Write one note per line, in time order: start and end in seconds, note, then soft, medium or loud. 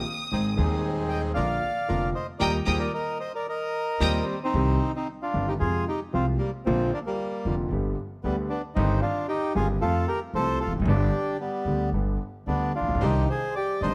0.00 0.80 D#6 medium
0.31 0.54 G#1 medium
0.31 0.54 G#2 soft
0.31 0.54 D#3 soft
0.31 0.54 G#3 soft
0.31 0.54 C4 soft
0.31 0.54 C4 medium
0.31 0.54 D#4 soft
0.31 0.54 G#4 soft
0.31 0.54 G#4 medium
0.56 1.32 D#1 medium
0.56 1.32 D#2 medium
0.56 1.31 D#3 medium
0.56 1.32 G#3 medium
0.56 1.32 C4 medium
0.56 1.32 D#4 medium
0.56 1.32 G#4 medium
0.56 1.33 G#4 medium
1.09 1.22 D#5 medium
1.09 1.21 G5 medium
1.34 1.58 A#1 medium
1.34 1.59 A#2 medium
1.34 1.58 D3 soft
1.34 1.59 F3 soft
1.34 1.59 A#3 soft
1.34 1.58 D4 medium
1.34 1.58 F4 soft
1.34 1.59 F4 soft
1.34 1.58 A#4 medium
1.34 2.10 D5 medium
1.34 2.10 F5 medium
1.88 2.10 F1 medium
1.88 2.11 F1 medium
1.88 2.11 F2 medium
1.88 2.10 D3 soft
1.88 2.10 F3 soft
1.88 2.11 A#3 soft
1.88 2.10 D4 medium
1.88 2.10 F4 soft
1.88 2.11 F4 soft
1.88 2.10 A#4 medium
2.15 2.27 C5 medium
2.15 2.27 D#5 medium
2.39 2.60 D#2 medium
2.39 2.57 A#2 medium
2.39 2.57 D#3 medium
2.39 2.57 G3 medium
2.39 2.57 A#3 medium
2.39 2.57 D#4 medium
2.39 2.57 G4 medium
2.39 2.52 A#4 medium
2.39 2.51 D5 medium
2.39 2.57 G5 medium
2.39 2.57 A#5 medium
2.39 2.57 D#6 medium
2.65 2.87 D#2 medium
2.65 2.84 A#2 medium
2.65 2.84 D#3 medium
2.65 2.84 G3 medium
2.65 2.83 A#3 medium
2.65 2.83 D#4 medium
2.65 2.83 G4 loud
2.65 2.79 G#4 medium
2.65 2.80 C5 medium
2.65 2.83 G5 medium
2.65 2.83 A#5 medium
2.65 2.82 D#6 medium
2.79 2.92 A#4 medium
2.79 2.92 D5 medium
2.94 3.18 A#4 medium
2.94 3.18 D#5 medium
3.20 3.32 C5 medium
3.20 3.32 D#5 medium
3.35 3.47 A#4 medium
3.35 3.47 D5 medium
3.49 4.25 A#4 medium
3.49 4.25 D#5 medium
4.00 4.20 D#2 medium
4.00 4.18 A#2 medium
4.00 4.18 D#3 medium
4.00 4.18 G3 medium
4.00 4.39 G3 medium
4.00 4.18 A#3 medium
4.00 4.17 D#4 loud
4.00 4.17 G4 medium
4.00 4.18 G5 medium
4.00 4.18 A#5 medium
4.00 4.18 D#6 medium
4.04 4.40 C4 medium
4.43 4.91 C4 medium
4.43 4.92 D#4 medium
4.54 4.76 C2 medium
4.54 4.77 C2 medium
4.54 4.77 C3 medium
4.54 4.77 D#3 medium
4.54 4.76 G3 medium
4.54 4.77 C4 medium
4.54 4.77 G4 medium
4.96 5.07 C4 medium
4.96 5.08 D#4 medium
5.23 5.46 D4 medium
5.23 5.49 F4 medium
5.34 5.56 G1 medium
5.34 5.56 G2 medium
5.34 5.56 D#3 soft
5.34 5.56 G3 soft
5.34 5.56 C4 soft
5.34 5.56 G4 medium
5.48 5.54 D#4 medium
5.48 5.54 G4 medium
5.60 5.83 F2 medium
5.60 5.83 C3 soft
5.60 5.83 F3 medium
5.60 5.83 G#3 soft
5.60 5.85 F4 medium
5.60 5.84 F4 medium
5.60 5.85 G#4 loud
5.88 6.00 D#4 medium
5.88 6.00 G4 medium
6.13 6.36 C2 medium
6.13 6.36 C3 medium
6.13 6.35 F3 soft
6.13 6.36 G#3 soft
6.13 6.26 C4 medium
6.13 6.36 F4 medium
6.13 6.26 F4 medium
6.38 6.51 G3 medium
6.38 6.50 A#3 medium
6.65 6.89 A#1 medium
6.65 6.89 A#2 medium
6.65 6.88 D3 medium
6.65 6.91 F3 medium
6.65 6.89 F3 medium
6.65 6.89 A#3 medium
6.65 6.93 C4 medium
6.65 6.89 F4 medium
6.93 6.99 A#3 medium
6.93 6.99 D4 medium
7.06 7.55 G3 medium
7.06 7.55 A#3 medium
7.45 7.67 F1 medium
7.45 7.68 F1 medium
7.45 7.68 F2 medium
7.45 7.68 D3 soft
7.45 7.68 F3 soft
7.45 7.68 A#3 soft
7.45 7.68 F4 medium
7.71 7.93 G1 medium
7.71 7.94 G1 medium
7.71 7.94 G2 medium
7.71 7.94 D3 soft
7.71 7.94 G3 soft
7.71 7.94 B3 soft
7.71 7.94 G4 medium
8.24 8.46 D2 medium
8.24 8.47 D3 medium
8.24 8.36 G3 medium
8.24 8.46 G3 soft
8.24 8.35 B3 medium
8.24 8.47 B3 soft
8.24 8.47 G4 medium
8.50 8.62 B3 medium
8.50 8.61 D4 medium
8.75 8.98 G1 loud
8.75 8.99 G1 medium
8.75 8.99 G2 medium
8.75 8.99 D#3 medium
8.75 8.99 G3 medium
8.75 9.00 C4 medium
8.75 8.99 C4 medium
8.75 9.00 D#4 medium
8.75 8.99 G4 medium
9.02 9.27 D4 medium
9.02 9.27 F4 medium
9.28 9.53 D#4 medium
9.28 9.53 G4 loud
9.55 9.77 G1 medium
9.55 9.78 G1 medium
9.55 9.77 G2 medium
9.55 9.77 D#3 soft
9.55 9.77 G3 soft
9.55 9.77 C4 soft
9.55 9.68 F4 medium
9.55 9.77 G4 medium
9.55 9.68 G#4 loud
9.81 10.03 F2 medium
9.81 10.04 F2 medium
9.81 10.04 F3 medium
9.81 10.04 A3 soft
9.81 10.04 C4 soft
9.81 10.06 F4 medium
9.81 10.08 A4 loud
9.81 10.04 A4 medium
10.08 10.20 G4 medium
10.08 10.20 A#4 medium
10.34 10.56 C2 medium
10.34 10.58 C2 medium
10.34 10.57 C3 medium
10.34 10.57 F3 soft
10.34 10.57 A3 soft
10.34 10.57 C4 soft
10.34 10.59 A4 medium
10.34 10.57 A4 medium
10.34 10.59 C5 loud
10.60 10.73 F4 medium
10.60 10.72 A4 medium
10.67 10.71 E1 soft
10.67 10.74 E2 medium
10.72 10.79 F1 medium
10.72 10.81 F2 medium
10.80 10.85 F#1 medium
10.80 10.88 F#2 medium
10.85 11.08 G1 medium
10.85 11.10 G1 medium
10.85 11.10 G2 medium
10.85 11.10 D3 medium
10.85 11.10 G3 medium
10.85 11.10 B3 medium
10.85 11.37 D4 medium
10.85 11.10 G4 medium
10.85 11.37 G4 loud
11.40 11.90 G3 medium
11.40 11.90 B3 medium
11.65 11.88 D2 medium
11.65 11.90 D2 medium
11.65 11.90 D3 medium
11.65 11.89 G3 soft
11.65 11.90 B3 soft
11.65 11.90 G4 medium
11.92 12.15 G1 medium
11.92 12.16 G1 medium
11.92 12.16 G2 medium
11.92 12.16 D3 soft
11.92 12.16 G3 soft
11.92 12.16 B3 soft
11.92 12.16 G4 soft
12.47 12.70 D2 medium
12.47 12.70 D3 medium
12.47 12.70 G3 soft
12.47 12.73 B3 medium
12.47 12.70 B3 soft
12.47 12.72 D4 medium
12.47 12.70 G4 soft
12.75 13.00 D4 medium
12.75 13.03 F4 medium
12.81 12.88 A1 soft
12.81 12.88 A1 medium
12.88 12.95 A#1 medium
12.88 12.94 A#1 medium
12.95 13.01 B1 medium
12.95 13.00 B1 medium
13.00 13.24 C2 medium
13.00 13.25 C2 medium
13.00 13.25 C3 medium
13.00 13.25 D#3 medium
13.00 13.25 C4 medium
13.00 13.23 D4 medium
13.00 13.25 D4 medium
13.00 13.23 D#4 medium
13.00 13.29 G4 medium
13.00 13.25 G4 medium
13.00 13.24 C5 medium
13.04 13.28 D#4 medium
13.30 13.55 G#4 medium
13.30 13.54 C5 medium
13.56 13.81 G4 medium
13.56 13.83 D5 loud
13.81 13.94 G1 medium
13.81 13.94 G2 medium
13.81 13.94 D#3 soft
13.81 13.94 C4 soft
13.81 13.94 D4 medium
13.81 13.94 D4 soft
13.81 13.94 D#4 soft
13.81 13.94 G4 medium
13.81 13.94 C5 medium
13.81 13.94 D#5 loud